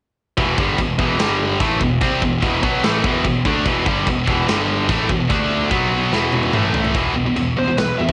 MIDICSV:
0, 0, Header, 1, 5, 480
1, 0, Start_track
1, 0, Key_signature, 1, "minor"
1, 0, Tempo, 410678
1, 445, Time_signature, 4, 2, 24, 8
1, 9491, End_track
2, 0, Start_track
2, 0, Title_t, "Lead electric guitar"
2, 0, Program_c, 0, 29
2, 8869, Note_on_c, 0, 72, 89
2, 9091, Note_off_c, 0, 72, 0
2, 9096, Note_on_c, 0, 71, 100
2, 9327, Note_on_c, 0, 76, 112
2, 9340, Note_off_c, 0, 71, 0
2, 9491, Note_off_c, 0, 76, 0
2, 9491, End_track
3, 0, Start_track
3, 0, Title_t, "Distorted electric guitar"
3, 0, Program_c, 1, 30
3, 439, Note_on_c, 1, 40, 84
3, 446, Note_on_c, 1, 47, 95
3, 455, Note_on_c, 1, 52, 92
3, 674, Note_off_c, 1, 40, 0
3, 677, Note_off_c, 1, 47, 0
3, 681, Note_on_c, 1, 43, 85
3, 682, Note_off_c, 1, 52, 0
3, 685, Note_on_c, 1, 50, 101
3, 696, Note_on_c, 1, 55, 112
3, 905, Note_off_c, 1, 43, 0
3, 910, Note_on_c, 1, 40, 63
3, 912, Note_off_c, 1, 50, 0
3, 917, Note_on_c, 1, 47, 70
3, 922, Note_off_c, 1, 55, 0
3, 1108, Note_off_c, 1, 40, 0
3, 1111, Note_off_c, 1, 47, 0
3, 1150, Note_on_c, 1, 40, 74
3, 1159, Note_on_c, 1, 47, 90
3, 1166, Note_on_c, 1, 52, 86
3, 1380, Note_off_c, 1, 40, 0
3, 1385, Note_on_c, 1, 43, 93
3, 1386, Note_off_c, 1, 47, 0
3, 1391, Note_on_c, 1, 50, 103
3, 1394, Note_off_c, 1, 52, 0
3, 1399, Note_on_c, 1, 55, 117
3, 1863, Note_off_c, 1, 50, 0
3, 1865, Note_off_c, 1, 43, 0
3, 1868, Note_on_c, 1, 45, 102
3, 1872, Note_off_c, 1, 55, 0
3, 1877, Note_on_c, 1, 52, 99
3, 1883, Note_on_c, 1, 57, 90
3, 2106, Note_on_c, 1, 40, 58
3, 2107, Note_off_c, 1, 45, 0
3, 2111, Note_off_c, 1, 52, 0
3, 2111, Note_on_c, 1, 47, 71
3, 2114, Note_off_c, 1, 57, 0
3, 2305, Note_off_c, 1, 40, 0
3, 2307, Note_off_c, 1, 47, 0
3, 2347, Note_on_c, 1, 48, 84
3, 2358, Note_on_c, 1, 55, 88
3, 2362, Note_on_c, 1, 60, 101
3, 2585, Note_off_c, 1, 48, 0
3, 2591, Note_off_c, 1, 55, 0
3, 2593, Note_off_c, 1, 60, 0
3, 2600, Note_on_c, 1, 40, 67
3, 2605, Note_on_c, 1, 47, 72
3, 2791, Note_off_c, 1, 40, 0
3, 2794, Note_off_c, 1, 47, 0
3, 2832, Note_on_c, 1, 40, 92
3, 2840, Note_on_c, 1, 47, 95
3, 2847, Note_on_c, 1, 52, 92
3, 3060, Note_off_c, 1, 47, 0
3, 3068, Note_off_c, 1, 40, 0
3, 3074, Note_on_c, 1, 47, 88
3, 3075, Note_off_c, 1, 52, 0
3, 3084, Note_on_c, 1, 54, 87
3, 3086, Note_on_c, 1, 59, 82
3, 3308, Note_off_c, 1, 47, 0
3, 3314, Note_off_c, 1, 54, 0
3, 3314, Note_off_c, 1, 59, 0
3, 3316, Note_on_c, 1, 45, 100
3, 3322, Note_on_c, 1, 52, 115
3, 3328, Note_on_c, 1, 57, 118
3, 3549, Note_off_c, 1, 45, 0
3, 3552, Note_off_c, 1, 52, 0
3, 3554, Note_on_c, 1, 40, 83
3, 3555, Note_off_c, 1, 57, 0
3, 3563, Note_on_c, 1, 47, 95
3, 3566, Note_on_c, 1, 52, 107
3, 3781, Note_off_c, 1, 40, 0
3, 3783, Note_off_c, 1, 47, 0
3, 3794, Note_off_c, 1, 52, 0
3, 3795, Note_on_c, 1, 40, 61
3, 3797, Note_on_c, 1, 47, 82
3, 3988, Note_off_c, 1, 40, 0
3, 3989, Note_off_c, 1, 47, 0
3, 4040, Note_on_c, 1, 50, 79
3, 4046, Note_on_c, 1, 57, 94
3, 4052, Note_on_c, 1, 62, 102
3, 4271, Note_off_c, 1, 50, 0
3, 4274, Note_off_c, 1, 57, 0
3, 4277, Note_off_c, 1, 62, 0
3, 4279, Note_on_c, 1, 40, 92
3, 4286, Note_on_c, 1, 47, 98
3, 4293, Note_on_c, 1, 52, 104
3, 4510, Note_off_c, 1, 40, 0
3, 4514, Note_off_c, 1, 47, 0
3, 4517, Note_off_c, 1, 52, 0
3, 4527, Note_on_c, 1, 43, 95
3, 4538, Note_on_c, 1, 50, 95
3, 4541, Note_on_c, 1, 55, 109
3, 4754, Note_off_c, 1, 43, 0
3, 4760, Note_off_c, 1, 50, 0
3, 4762, Note_off_c, 1, 55, 0
3, 4764, Note_on_c, 1, 40, 60
3, 4773, Note_on_c, 1, 47, 70
3, 4952, Note_off_c, 1, 40, 0
3, 4956, Note_off_c, 1, 47, 0
3, 4996, Note_on_c, 1, 40, 84
3, 5007, Note_on_c, 1, 47, 82
3, 5010, Note_on_c, 1, 52, 93
3, 5229, Note_off_c, 1, 40, 0
3, 5234, Note_off_c, 1, 47, 0
3, 5236, Note_off_c, 1, 52, 0
3, 5240, Note_on_c, 1, 43, 106
3, 5248, Note_on_c, 1, 50, 113
3, 5255, Note_on_c, 1, 55, 113
3, 5706, Note_off_c, 1, 50, 0
3, 5711, Note_off_c, 1, 43, 0
3, 5711, Note_on_c, 1, 45, 95
3, 5713, Note_off_c, 1, 55, 0
3, 5717, Note_on_c, 1, 52, 97
3, 5718, Note_on_c, 1, 57, 107
3, 5947, Note_off_c, 1, 45, 0
3, 5950, Note_off_c, 1, 52, 0
3, 5950, Note_off_c, 1, 57, 0
3, 5954, Note_on_c, 1, 40, 68
3, 5961, Note_on_c, 1, 47, 78
3, 6148, Note_off_c, 1, 40, 0
3, 6151, Note_off_c, 1, 47, 0
3, 6188, Note_on_c, 1, 50, 100
3, 6200, Note_on_c, 1, 57, 92
3, 6204, Note_on_c, 1, 62, 101
3, 6666, Note_off_c, 1, 50, 0
3, 6671, Note_on_c, 1, 47, 93
3, 6672, Note_off_c, 1, 57, 0
3, 6674, Note_off_c, 1, 62, 0
3, 6681, Note_on_c, 1, 54, 102
3, 6686, Note_on_c, 1, 59, 103
3, 7148, Note_off_c, 1, 47, 0
3, 7153, Note_off_c, 1, 54, 0
3, 7156, Note_off_c, 1, 59, 0
3, 7156, Note_on_c, 1, 40, 102
3, 7163, Note_on_c, 1, 47, 106
3, 7169, Note_on_c, 1, 52, 113
3, 7626, Note_off_c, 1, 52, 0
3, 7627, Note_off_c, 1, 47, 0
3, 7632, Note_off_c, 1, 40, 0
3, 7632, Note_on_c, 1, 45, 102
3, 7640, Note_on_c, 1, 52, 97
3, 7643, Note_on_c, 1, 57, 108
3, 8111, Note_off_c, 1, 45, 0
3, 8112, Note_on_c, 1, 40, 83
3, 8115, Note_off_c, 1, 52, 0
3, 8116, Note_off_c, 1, 57, 0
3, 8119, Note_on_c, 1, 47, 91
3, 8127, Note_on_c, 1, 52, 79
3, 8344, Note_off_c, 1, 40, 0
3, 8347, Note_off_c, 1, 47, 0
3, 8351, Note_off_c, 1, 52, 0
3, 8360, Note_on_c, 1, 47, 78
3, 8365, Note_on_c, 1, 40, 70
3, 8467, Note_off_c, 1, 47, 0
3, 8471, Note_off_c, 1, 40, 0
3, 8481, Note_on_c, 1, 47, 83
3, 8485, Note_on_c, 1, 40, 63
3, 8588, Note_off_c, 1, 40, 0
3, 8593, Note_off_c, 1, 47, 0
3, 8602, Note_on_c, 1, 40, 77
3, 8607, Note_on_c, 1, 47, 81
3, 8820, Note_off_c, 1, 40, 0
3, 8823, Note_off_c, 1, 47, 0
3, 8849, Note_on_c, 1, 47, 69
3, 8855, Note_on_c, 1, 40, 54
3, 8960, Note_off_c, 1, 47, 0
3, 8966, Note_off_c, 1, 40, 0
3, 8974, Note_on_c, 1, 47, 78
3, 8980, Note_on_c, 1, 40, 68
3, 9082, Note_off_c, 1, 40, 0
3, 9082, Note_off_c, 1, 47, 0
3, 9096, Note_on_c, 1, 40, 85
3, 9096, Note_on_c, 1, 47, 84
3, 9309, Note_off_c, 1, 40, 0
3, 9309, Note_off_c, 1, 47, 0
3, 9337, Note_on_c, 1, 47, 66
3, 9340, Note_on_c, 1, 40, 64
3, 9441, Note_off_c, 1, 47, 0
3, 9446, Note_off_c, 1, 40, 0
3, 9455, Note_on_c, 1, 47, 70
3, 9491, Note_off_c, 1, 47, 0
3, 9491, End_track
4, 0, Start_track
4, 0, Title_t, "Picked electric bass"
4, 0, Program_c, 2, 34
4, 443, Note_on_c, 2, 28, 95
4, 667, Note_off_c, 2, 28, 0
4, 678, Note_on_c, 2, 31, 91
4, 904, Note_off_c, 2, 31, 0
4, 916, Note_on_c, 2, 28, 83
4, 1142, Note_off_c, 2, 28, 0
4, 1153, Note_on_c, 2, 28, 95
4, 1380, Note_off_c, 2, 28, 0
4, 1404, Note_on_c, 2, 31, 82
4, 1848, Note_off_c, 2, 31, 0
4, 1870, Note_on_c, 2, 33, 90
4, 2098, Note_off_c, 2, 33, 0
4, 2109, Note_on_c, 2, 28, 84
4, 2337, Note_off_c, 2, 28, 0
4, 2348, Note_on_c, 2, 36, 99
4, 2576, Note_off_c, 2, 36, 0
4, 2592, Note_on_c, 2, 28, 73
4, 2818, Note_off_c, 2, 28, 0
4, 2832, Note_on_c, 2, 28, 88
4, 3058, Note_off_c, 2, 28, 0
4, 3067, Note_on_c, 2, 35, 90
4, 3295, Note_off_c, 2, 35, 0
4, 3320, Note_on_c, 2, 33, 92
4, 3542, Note_off_c, 2, 33, 0
4, 3551, Note_on_c, 2, 28, 97
4, 3777, Note_off_c, 2, 28, 0
4, 3791, Note_on_c, 2, 28, 73
4, 4017, Note_off_c, 2, 28, 0
4, 4035, Note_on_c, 2, 38, 91
4, 4259, Note_off_c, 2, 38, 0
4, 4269, Note_on_c, 2, 28, 93
4, 4496, Note_off_c, 2, 28, 0
4, 4511, Note_on_c, 2, 31, 98
4, 4737, Note_off_c, 2, 31, 0
4, 4750, Note_on_c, 2, 28, 79
4, 4976, Note_off_c, 2, 28, 0
4, 4995, Note_on_c, 2, 28, 93
4, 5219, Note_off_c, 2, 28, 0
4, 5245, Note_on_c, 2, 31, 90
4, 5687, Note_off_c, 2, 31, 0
4, 5713, Note_on_c, 2, 33, 83
4, 5938, Note_off_c, 2, 33, 0
4, 5950, Note_on_c, 2, 28, 81
4, 6176, Note_off_c, 2, 28, 0
4, 6192, Note_on_c, 2, 38, 107
4, 6642, Note_off_c, 2, 38, 0
4, 6668, Note_on_c, 2, 35, 89
4, 7120, Note_off_c, 2, 35, 0
4, 7157, Note_on_c, 2, 28, 91
4, 7606, Note_off_c, 2, 28, 0
4, 7635, Note_on_c, 2, 33, 100
4, 8086, Note_off_c, 2, 33, 0
4, 8119, Note_on_c, 2, 28, 94
4, 8270, Note_off_c, 2, 28, 0
4, 8365, Note_on_c, 2, 28, 89
4, 8515, Note_off_c, 2, 28, 0
4, 8604, Note_on_c, 2, 28, 89
4, 8754, Note_off_c, 2, 28, 0
4, 8851, Note_on_c, 2, 28, 77
4, 9000, Note_off_c, 2, 28, 0
4, 9093, Note_on_c, 2, 35, 81
4, 9241, Note_off_c, 2, 35, 0
4, 9338, Note_on_c, 2, 28, 77
4, 9485, Note_off_c, 2, 28, 0
4, 9491, End_track
5, 0, Start_track
5, 0, Title_t, "Drums"
5, 442, Note_on_c, 9, 36, 107
5, 442, Note_on_c, 9, 52, 57
5, 559, Note_off_c, 9, 36, 0
5, 559, Note_off_c, 9, 52, 0
5, 680, Note_on_c, 9, 36, 109
5, 797, Note_off_c, 9, 36, 0
5, 917, Note_on_c, 9, 52, 54
5, 918, Note_on_c, 9, 36, 80
5, 1034, Note_off_c, 9, 52, 0
5, 1035, Note_off_c, 9, 36, 0
5, 1156, Note_on_c, 9, 36, 106
5, 1273, Note_off_c, 9, 36, 0
5, 1392, Note_on_c, 9, 52, 60
5, 1402, Note_on_c, 9, 38, 117
5, 1509, Note_off_c, 9, 52, 0
5, 1519, Note_off_c, 9, 38, 0
5, 1873, Note_on_c, 9, 36, 110
5, 1873, Note_on_c, 9, 52, 65
5, 1990, Note_off_c, 9, 36, 0
5, 1990, Note_off_c, 9, 52, 0
5, 2112, Note_on_c, 9, 36, 87
5, 2229, Note_off_c, 9, 36, 0
5, 2349, Note_on_c, 9, 52, 61
5, 2351, Note_on_c, 9, 36, 101
5, 2466, Note_off_c, 9, 52, 0
5, 2468, Note_off_c, 9, 36, 0
5, 2593, Note_on_c, 9, 36, 93
5, 2710, Note_off_c, 9, 36, 0
5, 2832, Note_on_c, 9, 36, 96
5, 2833, Note_on_c, 9, 52, 56
5, 2949, Note_off_c, 9, 36, 0
5, 2950, Note_off_c, 9, 52, 0
5, 3071, Note_on_c, 9, 36, 110
5, 3188, Note_off_c, 9, 36, 0
5, 3311, Note_on_c, 9, 52, 58
5, 3320, Note_on_c, 9, 38, 109
5, 3428, Note_off_c, 9, 52, 0
5, 3437, Note_off_c, 9, 38, 0
5, 3553, Note_on_c, 9, 36, 111
5, 3670, Note_off_c, 9, 36, 0
5, 3793, Note_on_c, 9, 36, 87
5, 3794, Note_on_c, 9, 52, 57
5, 3910, Note_off_c, 9, 36, 0
5, 3911, Note_off_c, 9, 52, 0
5, 4032, Note_on_c, 9, 36, 105
5, 4149, Note_off_c, 9, 36, 0
5, 4273, Note_on_c, 9, 36, 102
5, 4275, Note_on_c, 9, 52, 57
5, 4389, Note_off_c, 9, 36, 0
5, 4392, Note_off_c, 9, 52, 0
5, 4512, Note_on_c, 9, 36, 115
5, 4629, Note_off_c, 9, 36, 0
5, 4753, Note_on_c, 9, 36, 87
5, 4756, Note_on_c, 9, 52, 57
5, 4870, Note_off_c, 9, 36, 0
5, 4873, Note_off_c, 9, 52, 0
5, 4993, Note_on_c, 9, 36, 112
5, 5110, Note_off_c, 9, 36, 0
5, 5237, Note_on_c, 9, 52, 60
5, 5246, Note_on_c, 9, 38, 116
5, 5353, Note_off_c, 9, 52, 0
5, 5363, Note_off_c, 9, 38, 0
5, 5713, Note_on_c, 9, 36, 113
5, 5717, Note_on_c, 9, 52, 62
5, 5830, Note_off_c, 9, 36, 0
5, 5834, Note_off_c, 9, 52, 0
5, 5953, Note_on_c, 9, 36, 88
5, 6070, Note_off_c, 9, 36, 0
5, 6193, Note_on_c, 9, 36, 108
5, 6200, Note_on_c, 9, 52, 63
5, 6310, Note_off_c, 9, 36, 0
5, 6317, Note_off_c, 9, 52, 0
5, 6673, Note_on_c, 9, 36, 97
5, 6680, Note_on_c, 9, 52, 56
5, 6790, Note_off_c, 9, 36, 0
5, 6797, Note_off_c, 9, 52, 0
5, 7162, Note_on_c, 9, 38, 66
5, 7279, Note_off_c, 9, 38, 0
5, 7388, Note_on_c, 9, 48, 73
5, 7505, Note_off_c, 9, 48, 0
5, 7515, Note_on_c, 9, 48, 70
5, 7632, Note_off_c, 9, 48, 0
5, 7635, Note_on_c, 9, 47, 89
5, 7752, Note_off_c, 9, 47, 0
5, 7878, Note_on_c, 9, 43, 94
5, 7994, Note_off_c, 9, 43, 0
5, 8002, Note_on_c, 9, 43, 91
5, 8115, Note_on_c, 9, 52, 53
5, 8119, Note_off_c, 9, 43, 0
5, 8119, Note_on_c, 9, 36, 106
5, 8232, Note_off_c, 9, 52, 0
5, 8236, Note_off_c, 9, 36, 0
5, 8605, Note_on_c, 9, 52, 51
5, 8721, Note_off_c, 9, 52, 0
5, 9088, Note_on_c, 9, 52, 63
5, 9097, Note_on_c, 9, 38, 117
5, 9205, Note_off_c, 9, 52, 0
5, 9214, Note_off_c, 9, 38, 0
5, 9451, Note_on_c, 9, 36, 86
5, 9491, Note_off_c, 9, 36, 0
5, 9491, End_track
0, 0, End_of_file